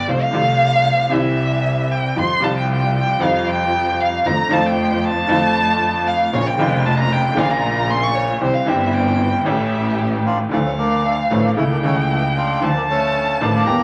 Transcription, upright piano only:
0.07 C2 C3 F3 A3 F4
0.31 C2 C3 F3 A3 F4
1.09 C2 C3 E3 G3
1.13 E4
2.16 F2 C3 F3 G3 F4
2.40 C2 C3 F3 G3
2.44 F4
3.19 F2 C3 F3 G3
3.23 F4
4.25 F2 D3 F3 A3 F4
4.49 F2 D3 F3 A3 F4
5.27 F2 D3 F3 A3
5.31 F4
6.33 A#1 A#2 C#3 F3 A#3 F4
6.57 F1 F2 C#3 F3 A#3 F4
7.35 A#1 A#2 C#3 F3 A#3
7.39 F4
8.40 C2 C3 E3 G3 C4 G4
8.65 G1 G2 E3 G3 C4 G4
9.43 A1 A2 E3 A3 C#4
9.47 G4
10.49 D2 D3 F3 A3
10.53 F4
11.30 A1 A2 D3 F3 A3 F4
11.57 C#2 C#3 E3 A3 E4
11.81 C#2 C#3 E3 A3
11.85 E4
12.60 D2 D3 F3 A3 F4
13.41 A1 A2 D3 F3 A3 F4
13.66 E2 E3 G3 A#3 G4

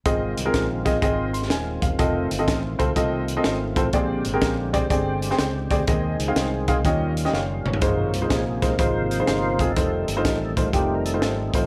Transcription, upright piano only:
0.06 G#2 C4 F4 G#4 D#5
0.45 C4 F4 G#4 A#4
0.85 C4 F4 G#4 D#5
1.02 C4 F4 G#4 D#5
1.33 C6
1.50 G#5
1.82 F5
1.99 C4 F4 A4 D#5
2.39 C4 F4 A4 D#5
2.79 C4 F4 A4 C5
2.96 C4 F4 A4 D#5
3.37 C4 F4 A4 D#5
3.76 C4 F4 A4 C5
3.94 A#2 C4 G4 G#4 D5
4.34 C4 G4 G#4 A#4
4.73 C4 G4 G#4 D5
4.91 C4 G4 G#4 D5
5.31 C4 G4 G#4 C5
5.71 C4 G4 G#4 D5
5.88 D#3 C4 D#4 G#4 D#5
6.28 C4 D#4 G#4 F5
6.68 C4 D#4 G#4 F5
6.85 D#3 C#4 F4 G4 D#5
7.25 C#4 F4 G4 D#5
7.34 F5
7.66 C#5
7.82 G#2 G#3 D#4 F4 C5
8.22 G#3 D#4 F4 C5
8.62 G#3 D#4 F4 C5
8.79 G#3 D#4 F4 C5
9.20 G#3 D#4 F4 C5
9.60 G#3 D#4 F4 G#4
9.76 A3 D#4 F4 C5
10.16 A3 D#4 F4 C5
10.56 A3 D#4 F4 C5
10.73 A3 D#4 F4 G4
11.14 A3 D#4 F4 C5
11.55 A3 D#4 F4 C5

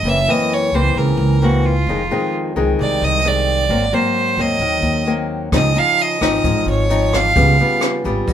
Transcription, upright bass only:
0.03 F#1
0.72 C#2
0.95 C#2
1.17 C#2
1.87 F1
2.56 C2
2.79 C2
3.02 C2
3.69 G#1
4.37 D#2
4.59 D#2
4.82 D#2
5.52 C#2
6.21 G#1
6.44 G#1
6.66 G#1
7.36 C#2
8.04 G#1
8.27 G#1

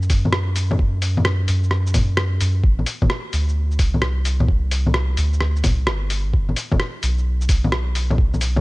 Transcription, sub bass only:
1.49 F#2
1.94 F#2
2.41 F#2
2.64 A1
3.33 D2
3.79 C2
5.18 D2
5.64 C2
5.87 G1
6.26 A1
6.34 G1
7.03 B1
7.49 B1

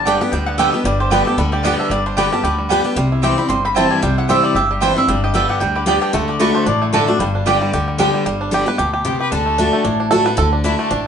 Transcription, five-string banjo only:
Already playing: G3 D4
0.07 G4
0.21 B3
0.34 G3
0.48 B3
0.59 D4
0.74 G3
0.86 G3
1.00 G4
1.12 B3
1.27 G4
1.39 G3
1.53 G4
1.64 B3
1.80 D4
1.91 G3
2.07 D4
2.17 G4
2.33 G3
2.44 G4
2.58 G3
2.71 D4
2.85 G3
2.97 G3
3.12 E4
3.24 G4
3.39 C4
3.50 G3
3.65 C4
3.77 E4
3.91 G3
4.03 G3
4.18 E4
4.29 G4
4.43 G3
4.56 G4
4.71 G3
4.83 E4
4.97 G3
5.08 G3
5.24 G4
5.36 B3
5.50 G4
5.62 G3
5.76 G4
5.87 B3
6.02 D4
6.14 A3
6.29 D4
6.41 D4
6.55 A3
6.66 D4
6.82 A3
6.94 D4
7.08 A3
7.20 G3
7.35 D4
7.47 G4
7.62 G3
7.74 G4
7.88 G3
8.00 D4
8.14 G3
8.26 G3
8.41 D4
8.54 G4
8.68 B4
8.78 G4
8.93 G4
9.06 B3
9.20 G4
9.32 D4
9.46 A3
9.58 D4
9.73 A3
9.85 D4
10.00 D4
10.11 A4
10.26 B4
10.38 A4
10.53 D4
10.65 D4
10.79 A3
10.91 D4

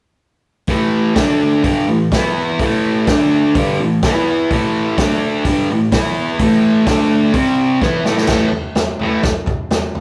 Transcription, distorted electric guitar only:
0.69 A2 E3 A3
1.15 D3 A3 D4
1.63 G2 D3 G3
1.89 A2 E3
2.13 E3 B3 E4
2.61 A2 E3 A3
3.07 D3 A3 D4
3.55 G2 D3 G3
3.81 A2 E3
4.04 E3 B3 E4
4.52 A2 E3 A3
4.99 D3 A3 D4
5.45 G2 D3 G3
5.70 A2 E3
5.92 E3 B3 E4
6.39 A2 E3 A3
6.87 D3 A3 D4
7.34 C3 G3 C4
7.82 E3 B3 E4
8.06 A2 E3 A3
8.28 A2 E3 A3
9.01 A2 E3 A3

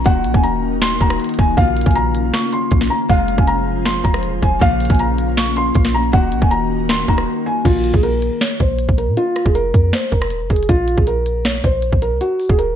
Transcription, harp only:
Already playing: C#3 F4
0.04 D#3 A#3 F#4
1.00 D#3 A#3 F#4
1.57 C#3 A#3 F4
3.08 C3 G#3 F4
4.59 C#3 A#3 F4
6.12 D#3 A#3 F#4
7.08 D#3 A#3 F#4

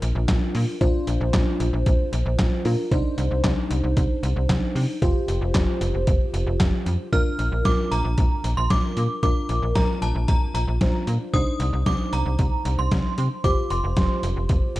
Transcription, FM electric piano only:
Already playing: D4 F4 A#4
0.81 D4 F4 C5
2.65 D4 F4 A#4
2.92 D4 D#4 C5
5.02 F4 G4 C5
7.13 D4 F4 A#4
9.23 D4 F4 A#4
10.81 D4 F4 C5
11.34 D4 D#4 C5
13.44 F4 G4 C5

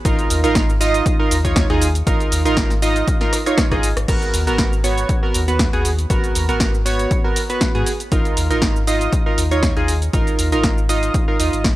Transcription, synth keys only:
0.05 D#4 F4 A#4
0.44 D#4 F4 A#4
0.81 D#4 F4 D#5
1.19 D#4 F4 A#4
1.45 D#4 F4 C#5
1.70 D#4 F4 G#4
2.07 D#4 F4 A#4
2.45 D#4 F4 A#4
2.82 D#4 F4 D#5
3.21 D#4 F4 A#4
3.46 D#4 F4 C#5
3.71 D#4 F4 G#4
4.08 B3 F#4 A#4
4.47 B3 F#4 A#4
4.84 B3 F#4 C#5
5.23 B3 F#4 A#4
5.48 B3 F#4 B4
5.73 B3 F#4 G#4
6.10 B3 F#4 A#4
6.49 B3 F#4 A#4
6.85 B3 F#4 C#5
7.24 B3 F#4 A#4
7.50 B3 F#4 B4
7.75 B3 F#4 G#4
8.12 D#4 F4 A#4
8.50 D#4 F4 A#4
8.87 D#4 F4 D#5
9.26 D#4 F4 A#4
9.51 D#4 F4 C#5
9.77 D#4 F4 G#4
10.13 D#4 F4 A#4
10.52 D#4 F4 A#4
10.89 D#4 F4 D#5
11.28 D#4 F4 A#4
11.40 D#4 F4 D#5

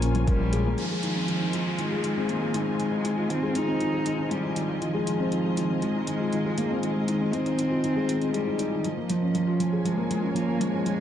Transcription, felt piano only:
Already playing: F3 A#3 C#4 F4 G#4
0.02 C#4
0.15 F3
0.28 A#4
0.40 F3
0.53 G#3
0.66 A#3
0.78 D#3
0.91 G#3
1.03 D#3
1.16 C4
1.28 D#3
1.41 D#4
1.54 D#3
1.66 F4
1.79 D#3
1.91 G#3
2.04 D#3
2.17 C4
2.29 D#3
2.42 G#3
2.54 D#3
2.67 C4
2.79 D#3
2.92 D#4
3.05 D#3
3.18 F4
3.30 D#3
3.43 G#3
3.56 D#3
3.68 C4
3.81 D#3
3.93 G#3
4.05 D#3
4.18 C4
4.31 D#3
4.43 D#4
4.56 D#3
4.68 F4
4.82 D#3
4.94 G#3
5.07 D#3
5.20 C4
5.32 D#3
5.45 G#3
5.57 D#3
5.70 C4
5.82 D#3
5.95 D#4
6.08 D#3
6.20 F4
6.33 D#3
6.45 G#3
6.58 D#3
6.71 C4
6.83 D#3
6.96 G#3
7.09 D#3
7.21 C4
7.33 D#3
7.46 D#4
7.58 D#3
7.71 F4
7.84 D#3
7.96 G#3
8.09 D#3
8.21 C4
8.34 G#3
8.46 D#4
8.59 D#4
8.72 D#3
8.84 F3
8.97 A#3
9.10 F3
9.22 C#4
9.35 F3
9.47 F4
9.60 F3
9.72 G#4
9.85 F3
9.97 A#3
10.10 F3
10.23 C#4
10.35 F3
10.48 A#3
10.60 F3
10.73 C#4
10.86 F3

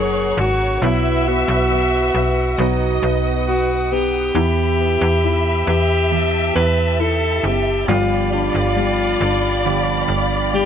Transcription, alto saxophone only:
Already playing: G#4
0.40 F#4
0.83 E4
1.28 F#4
3.47 F#4
3.92 G4
5.69 G4
6.56 B4
7.01 A4
7.46 G4
7.89 F4
8.32 F4
10.54 G4

